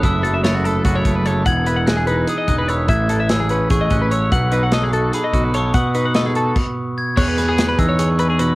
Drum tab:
CC |-------|-------|-------|-------|
HH |xxxxxxx|xxxxxxx|xxxxxxx|xxxxxxx|
SD |--o----|--o----|--o----|--o----|
BD |o---oo-|o----o-|o---oo-|o----o-|

CC |----x--|x------|
HH |xxxx---|-xxxxxx|
SD |--o----|-oo----|
BD |o---o--|o--o---|